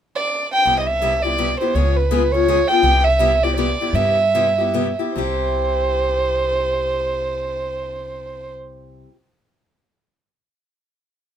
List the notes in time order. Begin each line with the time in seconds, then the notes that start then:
0.16 D5
0.52 G5
0.65 C2 C3 G3 B3 E4 G4
0.79 D#5
0.87 E5
1.02 C3 G3 B3 E4 G4
1.23 B3 E4 G4 D5
1.38 C3 G3 B3 E4 G4
1.60 B3 E4 G4 C5
1.74 C#2 C#3 G#3 B3 F4 G#4 C#5
1.96 B4
2.11 C#3 G#3 B3 F4 G#4
2.32 B3 F4 G#4 C#5
2.48 C#3 G#3 B3 F4 G#4
2.68 F4 G#4 G5
2.72 B3
2.83 C2 C3 G3 B3 E4 G4
3.04 E5
3.19 C3 G3 B3 E4 G4
3.43 B3 E4 G4 D5
3.56 C3 G3 B3 E4 G4 D5
3.81 B3 E4 G4
3.93 G2 C3 G3 B3 E4 G4 E5
4.35 C3 G3 B3 E4 G4
4.58 B3 E4 G4
4.74 C3 G3 B3 E4 G4
4.99 B3 E4 G4
5.16 C2 C3 G3 E4 G4 C5